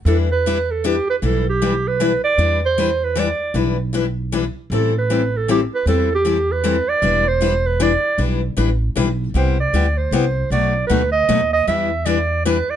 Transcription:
0.05 upright bass E2, steel-string acoustic guitar E3 G3 D4 E4 B4, clarinet A4
0.32 clarinet B4
0.46 steel-string acoustic guitar E3 G3 D4 E4 B4
0.71 clarinet A4
0.84 steel-string acoustic guitar E3 G3 D4 E4 B4, clarinet G4
1.10 clarinet B4
1.22 upright bass B1, steel-string acoustic guitar E3 G3 D4 E4 B4, clarinet A4
1.49 clarinet G4
1.62 steel-string acoustic guitar E3 G3 D4 E4 B4
1.88 clarinet B4
2.00 steel-string acoustic guitar E3 G3 D4 E4 B4
2.24 clarinet D5
2.38 upright bass E2, steel-string acoustic guitar E3 G3 D4 E4 B4
2.65 clarinet C5
2.78 steel-string acoustic guitar E3 G3 D4 E4 B4
3.04 clarinet B4
3.15 steel-string acoustic guitar E3 G3 D4 E4 B4, clarinet D5
3.54 upright bass B1, steel-string acoustic guitar E3 G3 D4 E4 B4
3.93 steel-string acoustic guitar E3 G3 D4 E4 B4
4.32 steel-string acoustic guitar E3 G3 D4 E4 B4
4.70 upright bass A1, steel-string acoustic guitar E3 G3 C4 E4 A4, clarinet A4
4.98 clarinet B4
5.10 steel-string acoustic guitar E3 G3 C4 E4 A4
5.37 clarinet A4
5.48 steel-string acoustic guitar E3 G3 C4 E4 A4, clarinet G4
5.75 clarinet B4
5.86 upright bass E2, steel-string acoustic guitar E3 G3 C4 E4 A4, clarinet A4
6.15 clarinet G4
6.25 steel-string acoustic guitar E3 G3 C4 E4 A4
6.52 clarinet B4
6.64 steel-string acoustic guitar E3 G3 C4 E4 A4
6.89 clarinet D5
7.02 upright bass E1, steel-string acoustic guitar E3 G3 D4 E4 B4
7.28 clarinet C5
7.41 steel-string acoustic guitar E3 G3 D4 E4 B4
7.67 clarinet B4
7.80 steel-string acoustic guitar E3 G3 D4 E4 B4, clarinet D5
8.18 upright bass B1, steel-string acoustic guitar E3 G3 D4 E4 B4
8.57 upright bass A1, steel-string acoustic guitar E3 G3 D4 E4 B4
8.96 upright bass B1, steel-string acoustic guitar E3 G3 D4 E4 B4
9.34 upright bass C2, steel-string acoustic guitar C3 G3 B3 E4 G4, clarinet C5
9.60 clarinet D5
9.73 upright bass D2, steel-string acoustic guitar C3 G3 B3 E4 G4
9.97 clarinet C5
10.11 upright bass C2, steel-string acoustic guitar C3 G3 B3 E4 G4
10.50 upright bass B1, steel-string acoustic guitar B2 F#3 A3 D#4 F#4, clarinet D5
10.87 upright bass D2, steel-string acoustic guitar B2 F#3 A3 D#4, clarinet B4
10.91 steel-string acoustic guitar F#4
11.12 clarinet D#5
11.29 upright bass D#2, steel-string acoustic guitar B2 F#3 A3 D#4 F#4
11.53 clarinet D#5
11.67 upright bass E2, steel-string acoustic guitar E3 G3 D4 E4 B4, clarinet E5
12.05 steel-string acoustic guitar E3 G3 D4 E4 B4, clarinet D5
12.45 steel-string acoustic guitar E3 G3 D4 E4 B4, clarinet B4
12.70 clarinet D5

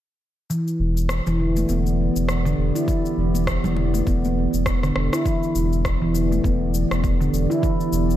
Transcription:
0.50 ambient pad E3 B3 G4 D5, handpan E3, shaker
0.68 shaker
0.80 sub bass E1
0.97 shaker
1.09 cross-stick, shaker
1.27 sub bass E1, handpan E3, shaker
1.40 handpan D3
1.57 handpan A3, shaker
1.69 sub bass E1, handpan B3, shaker
1.86 shaker
2.16 sub bass E1, shaker
2.29 cross-stick, shaker
2.45 handpan D3, shaker
2.58 sub bass E1
2.75 handpan E4, shaker
2.88 handpan E3, kick, shaker
3.06 shaker
3.18 sub bass E1
3.35 muted conga, shaker
3.47 kick, cross-stick, shaker
3.64 sub bass E1, handpan E3, low conga, shaker
3.77 handpan D3, muted conga
3.94 handpan A3, shaker
4.07 sub bass E1, handpan B3, kick, shaker
4.24 high conga, shaker
4.54 sub bass E1, shaker
4.66 kick, cross-stick, shaker
4.83 handpan D3, cross-stick, shaker
4.96 sub bass E1, cross-stick
5.13 handpan E4, cross-stick, shaker
5.25 ambient pad E3 B3 G4 D5, handpan E3, kick, shaker
5.43 shaker
5.55 sub bass E1, shaker
5.73 shaker
5.85 kick, cross-stick, shaker
6.02 sub bass E1, handpan E3
6.14 handpan D3, shaker
6.32 handpan A3, shaker
6.44 sub bass E1, handpan B3, kick, shaker
6.74 shaker
6.91 sub bass E1, cross-stick, shaker
7.04 kick, shaker
7.21 handpan D3, shaker
7.33 sub bass E1, shaker
7.50 handpan E4, shaker
7.62 handpan E3, kick, shaker
7.80 shaker
7.93 sub bass E1, shaker
8.10 shaker

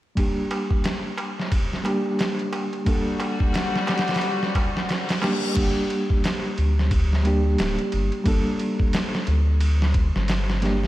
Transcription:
0.15 reed electric piano G3 A#3 D4 G4, kick, ride, darbuka tek
0.37 darbuka tek
0.51 ride, darbuka tek
0.71 kick, darbuka tek
0.84 snare, ride, darbuka tek
1.05 darbuka tek
1.18 ride, darbuka tek
1.38 snare, darbuka tek
1.51 kick, ride, darbuka tek
1.71 snare, darbuka tek
1.84 reed electric piano G3 A#3 D4 G4, ride, darbuka tek
2.06 darbuka tek
2.19 snare, ride, darbuka tek
2.39 ride, darbuka tek
2.53 ride, darbuka tek
2.73 ride, darbuka tek
2.85 reed electric piano G3 A#3 D4 A4, string section G3 F#4, kick, ride, darbuka tek
3.06 darbuka tek
3.20 ride, darbuka tek
3.40 kick, darbuka tek
3.53 snare, ride, darbuka tek
3.74 snare, darbuka tek
3.87 snare, ride, darbuka tek
3.98 snare, ride
4.08 snare, ride, darbuka tek
4.14 snare, ride
4.21 ride, reverse cymbal, darbuka tek
4.42 snare, darbuka tek
4.55 kick, ride, darbuka tek
4.75 snare, darbuka tek
4.89 snare, ride, darbuka tek
5.08 snare, ride, darbuka tek
5.21 reed electric piano G3 A#3 D4 G4, snare, ride, darbuka tek
5.42 darbuka tek
5.54 analog synth bass G1, reed electric piano G3 A#3 D4 G4, kick, crash, ride
5.90 ride
6.10 kick
6.24 snare, ride
6.58 analog synth bass D2, ride
6.79 snare
6.91 kick, ride
7.13 snare
7.23 reed electric piano G3 A#3 D4 G4, ride
7.58 analog synth bass D1, snare, ride
7.79 ride
7.92 analog synth bass G1, ride
8.12 ride
8.24 analog synth bass G1, reed electric piano G3 A#3 D4 A4, kick, ride
8.59 ride
8.80 kick
8.93 snare, ride
9.15 snare
9.27 analog synth bass D2, ride
9.61 ride
9.82 snare
9.94 kick, ride
10.15 analog synth bass G1, snare
10.28 snare, ride
10.50 snare
10.62 reed electric piano G3 A#3 D4 G4, snare, ride
10.83 snare

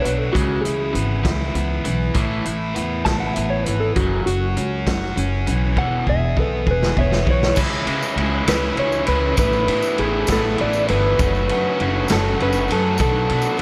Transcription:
Already playing: overdriven electric guitar D4 F#4
0.02 upright bass B1, overdriven electric guitar B2 F#3, clean electric guitar B4, closed hi-hat
0.18 clean electric guitar A4
0.32 upright bass C#2, overdriven electric guitar C#3 E3 G#3, clean electric guitar F#4, kick
0.36 closed hi-hat
0.61 upright bass C#2, overdriven electric guitar C#3 E3 E4, clean electric guitar G#4, closed hi-hat
0.93 upright bass G#1, overdriven electric guitar C#3 E3 B3, closed hi-hat
1.24 upright bass C#2, overdriven electric guitar C#3 E3 E4, kick, snare, closed hi-hat
1.54 upright bass C#2, overdriven electric guitar C#3 E3 B3, closed hi-hat
1.85 upright bass B1, overdriven electric guitar C#3 E3, closed hi-hat
2.14 upright bass A1, overdriven electric guitar A2 E3 A3, kick, closed hi-hat
2.45 upright bass A1, overdriven electric guitar A2 E3 E4, closed hi-hat
2.74 upright bass E2, overdriven electric guitar A2 E3 B3, closed hi-hat
3.05 upright bass A1, overdriven electric guitar A2 E3 E4, clean electric guitar A5, kick, snare, closed hi-hat
3.20 clean electric guitar F#5
3.34 upright bass A1, overdriven electric guitar A2 E3 B3, clean electric guitar E5, closed hi-hat
3.50 clean electric guitar C#5
3.64 upright bass G#1, overdriven electric guitar A2 E3, clean electric guitar B4, closed hi-hat
3.80 clean electric guitar A4
3.96 upright bass F#1, overdriven electric guitar F#2 C#3 F#3, clean electric guitar F#4, kick, closed hi-hat
4.26 upright bass F#1, overdriven electric guitar F#2 C#3 F#4, clean electric guitar F#4, closed hi-hat
4.57 upright bass C#2, overdriven electric guitar F#2 C#3 C#4, closed hi-hat
4.87 upright bass F#1, overdriven electric guitar F#2 C#3 F#4, kick, snare, closed hi-hat
5.16 upright bass F#1, overdriven electric guitar F#2 C#3 C#4, closed hi-hat
5.47 upright bass B1, overdriven electric guitar F#2 C#3 E3, closed hi-hat
5.76 upright bass E1, overdriven electric guitar E2 B2 E3, clean electric guitar F#5, kick
6.07 upright bass E1, overdriven electric guitar E2 B2 G#4, clean electric guitar E5, kick
6.36 upright bass B1, overdriven electric guitar E2 B2 B3, clean electric guitar A4 B4, kick
6.67 upright bass E1, overdriven electric guitar E2 B2 G#4, kick
6.71 clean electric guitar B4
6.83 snare
6.97 upright bass E1, overdriven electric guitar E2 B2 B3, clean electric guitar E5, kick
7.01 clean electric guitar C#5
7.12 snare
7.25 upright bass B1, overdriven electric guitar E2 B2 E3, kick
7.30 clean electric guitar C#5
7.43 snare
7.55 upright bass C#2, overdriven electric guitar C#3 E3 G#3 C#4 E4, kick, crash, tambourine
7.73 tambourine
7.86 overdriven electric guitar C#3 E3 G#3 C#4 E4, upright bass C#3, ride
8.02 tambourine
8.16 upright bass C#2, overdriven electric guitar C#3 E3 G#3 C#4 E4, ride
8.47 upright bass C#2, overdriven electric guitar C#3 E3 G#3 C#4 E4, clean electric guitar B4, snare, ride, tambourine
8.76 upright bass C#2, overdriven electric guitar C#3 E3 G#3 C#4 E4, clean electric guitar C#5, ride
8.92 tambourine
9.07 upright bass C#2, overdriven electric guitar C#3 E3 G#3 C#4 E4, clean electric guitar B4, ride, tambourine
9.37 upright bass A1, overdriven electric guitar A2 E3 A3 B3 E4, clean electric guitar B4, kick, ride, tambourine
9.53 tambourine
9.67 upright bass A2, overdriven electric guitar A2 E3 A3 B3 E4, ride
9.82 tambourine
9.98 upright bass A1, overdriven electric guitar A2 E3 A3 B3 E4, clean electric guitar G#4, ride
10.27 upright bass A1, overdriven electric guitar A2 E3 A3 B3 E4, kick, snare, ride, tambourine
10.32 clean electric guitar A4
10.58 upright bass A1, overdriven electric guitar A2 E3 A3 B3 E4, clean electric guitar D5, ride
10.73 tambourine
10.88 upright bass G1, overdriven electric guitar A2 E3 A3 B3 E4, clean electric guitar B4, ride, tambourine
11.18 upright bass F#1, overdriven electric guitar F#2 C#3 F#3 A3 C#4 F#4, kick, ride, tambourine
11.35 tambourine
11.49 overdriven electric guitar F#2 C#3 F#3 A3 C#4 F#4, upright bass F#2, ride
11.79 upright bass F#1, overdriven electric guitar F#2 C#3 F#3 A3 C#4 F#4, ride
12.08 upright bass F#1, overdriven electric guitar F#2 C#3 F#3 A3 C#4 F#4, snare, ride, tambourine
12.12 clean electric guitar A4
12.38 upright bass F#1, overdriven electric guitar F#2 C#3 F#3 A3 C#4 F#4, ride
12.42 clean electric guitar B4
12.53 tambourine
12.68 overdriven electric guitar F#2 C#3 F#3 A3 C#4 F#4, upright bass F#2, ride, tambourine
12.72 clean electric guitar A4
12.98 upright bass B1, overdriven electric guitar B2 F#3 B3 D4 F#4, clean electric guitar A4, kick, ride, tambourine
13.29 overdriven electric guitar B2 F#3 B3 D4 F#4, upright bass B2, ride
13.42 tambourine
13.57 tambourine

